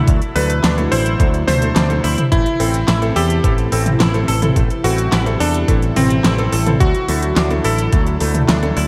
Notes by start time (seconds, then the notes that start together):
Already playing: D3 F#3 E4
0.08 D2 B2 F#3, kick, closed hi-hat
0.22 closed hi-hat
0.36 D2 F#3 A3 D4 E4 A4 B4, open hi-hat
0.50 closed hi-hat
0.64 D2 D4, snare, clap, closed hi-hat
0.78 F#3 A3 D4 E4 A4, closed hi-hat
0.92 A1 E4 C5, open hi-hat
1.06 closed hi-hat
1.20 D2 F#3 A3 D4 E4 A4, kick, closed hi-hat
1.34 closed hi-hat
1.48 D2 A3 C5, snare, mid tom, open hi-hat
1.62 F#3 A3 D4 E4 A4, closed hi-hat
1.76 D2 D4, snare, clap, closed hi-hat
1.90 F#3 A3 D4 E4 A4, closed hi-hat
2.04 D2 E4, open hi-hat
2.18 closed hi-hat, mid tom
2.32 A1 C3 E3 A3 E4, kick, closed hi-hat
2.46 closed hi-hat
2.60 A1 C4 E4 A4, open hi-hat
2.74 closed hi-hat
2.88 A1 E4, snare, clap, closed hi-hat
3.02 C4 E4 A4, closed hi-hat
3.16 E2 G4 A4, open hi-hat
3.30 closed hi-hat
3.44 A1 A3 C4 E4 A4, kick, closed hi-hat
3.58 closed hi-hat
3.72 A1 C4 E4 A4, open hi-hat
3.86 closed hi-hat, mid tom
4.00 A1 E4, snare, clap, closed hi-hat
4.14 C4 E4 A4, closed hi-hat
4.28 A1 A4, open hi-hat
4.42 C4 E4 A4, closed hi-hat, mid tom
4.56 A1 G3 A3, kick, closed hi-hat
4.70 closed hi-hat
4.84 A1 C4 E4 F#4 A4, open hi-hat
4.98 closed hi-hat
5.12 A1 E4, snare, clap, closed hi-hat
5.26 C4 E4 A4, closed hi-hat
5.40 E2 D4 A4, open hi-hat
5.54 closed hi-hat
5.68 A1 A3 C4 E4 A4, kick, closed hi-hat
5.82 closed hi-hat
5.96 A1 C4 E4 A4, mid tom, open hi-hat
6.10 closed hi-hat
6.24 A1 E4, snare, clap, closed hi-hat
6.38 C4 E4 A4, closed hi-hat
6.52 A1 A4, open hi-hat
6.66 C4 E4 A4, closed hi-hat, mid tom
6.80 D2 D3 F#3 A3 F#4, kick, closed hi-hat
6.95 closed hi-hat
7.08 D2 F#3 A3 D4 E4 A4, open hi-hat
7.23 closed hi-hat
7.36 D2 D4, snare, clap, closed hi-hat
7.50 F#3 A3 D4 E4 A4, closed hi-hat
7.64 A1 E4 A4, open hi-hat
7.78 closed hi-hat
7.92 D2 F#3 A3 D4 E4 A4, kick, closed hi-hat
8.06 closed hi-hat
8.20 D2 F#3 A3 D4 E4 A4, open hi-hat
8.35 closed hi-hat, mid tom
8.49 D2 D4, snare, clap, closed hi-hat
8.63 F#3 A3 D4 E4 A4, closed hi-hat
8.77 D2 E4, open hi-hat